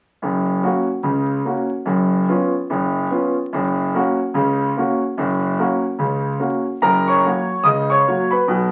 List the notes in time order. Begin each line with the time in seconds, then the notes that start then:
0.22 F#1 F#2
0.63 A#3 C#4 F#4
1.03 C#2 C#3
1.45 A#3 C#4 F#4
1.86 F#1 F#2
2.29 B3 C#4 F4
2.70 F#1 F#2
3.11 B3 C#4 F4
3.53 F#1 F#2
3.95 A#3 C#4 F#4
4.34 C#2 C#3
4.77 A#3 C#4 F#4
5.18 F#1 F#2
5.59 A#3 C#4 F#4
5.98 C#2 C#3
6.40 A#3 C#4 F#4
6.82 F#1 F#2 A#4 A#5
7.08 C#5 C#6
7.25 F#3 A#3 F#4
7.63 C#2 C#3 D#5 D#6
7.90 C#5 C#6
8.07 F#3 A#3 F#4
8.31 B4 B5
8.48 B1 B2